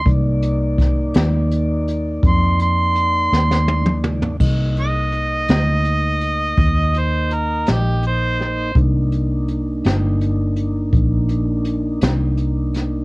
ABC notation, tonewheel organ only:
X:1
M:12/8
L:1/8
Q:3/8=55
K:Cm
V:1 name="Tonewheel organ"
[B,Ed]12 | [B,Ee]12 | [B,DE]12 |]